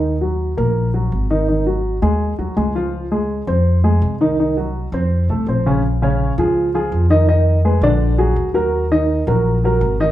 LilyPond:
<<
  \new Staff \with { instrumentName = "Grand piano" } { \time 4/4 \key des \major \tempo 4 = 166 <ees ees'>8 <ges ges'>4 <bes bes'>4 <ges ges'>4 <ees ees'>8 | <ees ees'>8 <ges ges'>4 <aes aes'>4 <ges ges'>8 <aes aes'>8 <f f'>8~ | <f f'>8 <aes aes'>4 <c' c''>4 <aes aes'>4 <ees ees'>8 | <ees ees'>8 <ges ges'>4 <c' c''>4 <a a'>8 <c' c''>8 <des des'>8 |
\key bes \minor r8 <des des' des''>4 <f f' aes'>4 <f f' aes'>4 <ees ees' ees''>8 | <ees ees' ees''>4 <aes aes' ces''>8 <d d' d''>4 <fis fis' aes'>4 <fis fis' bes'>8~ | <fis fis' bes'>8 <ees ees' ees''>4 <ges ges' bes'>4 <ges ges' bes'>4 <ees ees' ees''>8 | }
  \new Staff \with { instrumentName = "Upright bass" } { \clef bass \time 4/4 \key des \major ees,4. bes,,4. aes,,4~ | aes,,4. ees,4 ees,8 des,4~ | des,4. f,4. c,4~ | c,4. f,4 c,8 bes,,4~ |
\key bes \minor bes,,4. des,4. f,4~ | f,4. bes,,4. ees,4~ | ees,4. bes,,4. aes,,4 | }
>>